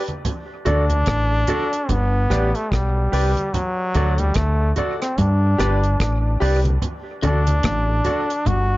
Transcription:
0.08 closed hi-hat, high conga
0.25 closed hi-hat, low conga
0.65 D2 D4 F#4 A4 D5, closed hi-hat, low conga
0.90 closed hi-hat, high conga
1.06 A1, kick, cross-stick, closed hi-hat, high conga
1.31 A4 D5
1.47 F#4 A4 D5, closed hi-hat, high conga, low conga
1.72 muted clean electric guitar stroke, closed hi-hat
1.89 G1 B3, closed hi-hat, low conga
2.30 A1 G4 B4 D5, cross-stick, closed hi-hat, low conga
2.55 A3, closed hi-hat
2.72 B1 G3, kick, cross-stick, closed hi-hat
2.96 B4 D5
3.12 C2 G4 B4 D5, open hi-hat
3.37 closed hi-hat, high conga
3.54 F#3, closed hi-hat, low conga
3.95 D2 F#4 A4 D5, closed hi-hat, low conga
4.18 G3, closed hi-hat, high conga
4.34 D2 A3, kick, cross-stick, closed hi-hat, high conga
4.60 A4 D5
4.76 F#4 A4 D5, closed hi-hat, high conga, low conga
5.00 C4, muted clean electric guitar stroke, cross-stick, closed hi-hat
5.18 G2 D4, closed hi-hat, low conga
5.58 G1 G4 B4 D5, cross-stick, closed hi-hat, low conga
5.83 closed hi-hat
6.00 A1, kick, cross-stick, closed hi-hat
6.40 C2 G4 B4 D5, open hi-hat
6.65 closed hi-hat, high conga
6.82 closed hi-hat, low conga
7.22 D2 D3 D4 F#4 A4 D5, closed hi-hat, low conga
7.47 closed hi-hat, high conga
7.63 A1 A2, kick, cross-stick, closed hi-hat, high conga
7.88 A4 D5
8.04 F#4 A4 D5, closed hi-hat, high conga, low conga
8.29 muted clean electric guitar stroke, closed hi-hat
8.46 G1 G2 F#4, closed hi-hat, low conga

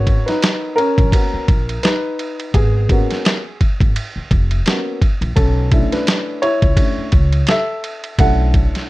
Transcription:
Already playing: G#1 B3 C#4 F#4 A#4 C#5
0.07 kick, ride
0.26 D#4 B4, snare, ride
0.42 snare, hi-hat pedal, ride
0.76 C#4 A#4, ride
0.98 A#1, kick, ride
1.12 A#3 B3 C#4 F#4, kick, ride
1.34 muted upright bass stroke
1.48 A#1, kick, ride
1.69 ride
1.83 D#4 B4, snare, hi-hat pedal, ride
2.19 ride
2.40 ride
2.54 G#1 B3 G#4, kick, ride
2.89 A#3 B3 C#4 F#4, kick, ride
3.10 snare, ride
3.25 snare, hi-hat pedal, ride
3.61 kick, ride
3.80 G#1, kick, ride
3.96 ride
4.16 muted upright bass stroke
4.31 F1, kick, ride
4.51 ride
4.66 A#3 B3 C#4 F#4, snare, hi-hat pedal, ride
5.02 kick, ride
5.21 A#1, ride
5.36 B1 C#4 A4, kick, ride
5.72 A3 C#4 D4 E4, kick, ride
5.92 D4 B4, snare, ride
6.07 snare, hi-hat pedal, ride
6.42 E4 C#5, ride
6.62 C#2, kick, ride
6.77 A3 C#4 D4 E4, kick, ride
6.98 muted upright bass stroke
7.12 C#2, kick, ride
7.33 ride
7.47 A4 E5, snare, hi-hat pedal, ride
7.84 ride
8.04 ride
8.18 B1 A3 C#4 D4 E4 A4 F#5, kick, ride
8.54 kick, ride
8.75 snare, ride

